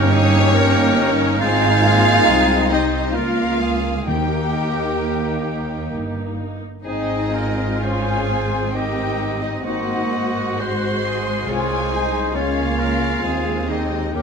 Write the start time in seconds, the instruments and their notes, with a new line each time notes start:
Already playing: double bass section G1, cello section G2, french horn section A#3 D#4, viola section C#4, clarinet C#4, violin section C#4 C#5, flute G4, oboe A#4
0.11 viola section D#4, oboe G#4
0.54 viola section A#3 D#4, oboe A#4
0.98 viola section C#4
1.40 double bass section G#1, cello section G#2, viola section C4, french horn section C4 D#4, violin section F4 F5, clarinet F4, flute G#4, oboe C5
1.83 viola section A#3
2.26 double bass section C2, cello section C2, viola section G#3, oboe G#4
2.70 viola section C4, violin section D#4 D#5, clarinet D#4, flute G4, oboe C5
3.14 double bass section C#2, cello section C#2, viola section A#3 F4, french horn section A#3 F4, violin section F4 F5, clarinet F4, oboe A#4, flute A#4
3.61 oboe G#4
4.06 double bass section D#2, cello section D#2, timpani D#3, french horn section A#3 D#4, viola section A#3 D#4, violin section G4 G5, clarinet G4, oboe G4, flute A#4
5.91 double bass section G1, cello section G2
6.84 double bass section G#1, cello section G#2, french horn section C4 D#4, viola section C4 D#4, violin section D#4 D#5, clarinet D#4, oboe G#4, flute G#4
7.34 viola section F4, oboe A#4
7.83 viola section C#4, violin section G#4 G#5, clarinet G#4, oboe C5, flute C5
8.30 viola section C4
8.74 viola section D#4, violin section G4 G5, clarinet G4, flute A#4, oboe D#5
9.41 violin section D#4 D#5, clarinet D#4, flute G4
9.64 double bass section G#1, cello section G#2, viola section A#3 D#4, french horn section C4 D#4, clarinet F#4, violin section F#4 F#5, flute C5, oboe D#5
10.12 viola section F#4
10.60 viola section G#3, oboe F#4, clarinet C5, violin section C5 C6, flute D#5
11.06 oboe G#4
11.48 double bass section C2, cello section C2, viola section F4, violin section G#4 G#5, clarinet G#4, flute C5, oboe C#5
11.92 viola section D#4, oboe C5
12.33 double bass section C#2, cello section C#2, french horn section G#3 C#4, viola section A#3 C#4, violin section F4 F5, clarinet F4, flute G#4, oboe C#5
12.78 viola section C#4, oboe A#4
13.22 double bass section D#2, cello section D#2, french horn section G#3 C4, viola section G#3 C4, oboe G#4
13.68 viola section G#3, violin section D#4 D#5, clarinet D#4, flute G4
14.13 double bass section D#2, cello section D#2, french horn section D#3 C#4, viola section A#3 D#4, violin section G4 G5, clarinet G4, flute A#4, oboe A#4